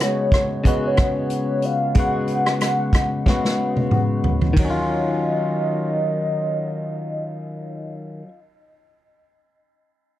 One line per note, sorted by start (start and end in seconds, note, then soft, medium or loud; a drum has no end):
0.00 0.63 C#3 medium
0.00 0.64 G#3 medium
0.00 0.65 B3 medium
0.00 0.68 F#4 medium
0.00 0.70 C#5 medium
0.00 cross-stick medium
0.00 closed hi-hat medium
0.32 kick medium
0.32 cross-stick medium
0.32 closed hi-hat soft
0.64 1.94 C#3 medium
0.64 1.96 G#3 medium
0.64 1.96 B3 medium
0.64 kick medium
0.64 closed hi-hat medium
0.68 1.99 F#4 medium
0.68 0.85 D#5 loud
0.87 0.99 C#5 medium
0.97 kick medium
0.97 cross-stick medium
0.97 closed hi-hat soft
1.01 1.67 C#5 medium
1.30 closed hi-hat medium
1.62 1.98 F5 medium
1.62 closed hi-hat soft
1.95 3.25 C#3 medium
1.95 3.26 G#3 medium
1.95 3.27 B3 medium
1.95 3.92 F#5 loud
1.95 kick loud
1.95 closed hi-hat medium
2.00 3.30 F#4 medium
2.28 closed hi-hat soft
2.46 cross-stick medium
2.61 cross-stick medium
2.61 closed hi-hat medium
2.93 kick medium
2.93 cross-stick medium
2.93 closed hi-hat soft
3.26 4.53 C#3 medium
3.26 4.57 G#3 medium
3.26 4.58 B3 medium
3.26 kick medium
3.26 snare soft
3.30 4.70 F#4 medium
3.45 snare soft
3.77 high tom soft
3.91 mid tom medium
4.24 floor tom medium
4.41 floor tom medium
4.53 8.22 D#3 medium
4.53 7.94 D#5 medium
4.53 kick medium
4.53 ride medium
4.59 8.28 F#3 medium
4.65 8.34 C#4 medium
4.70 8.39 F4 medium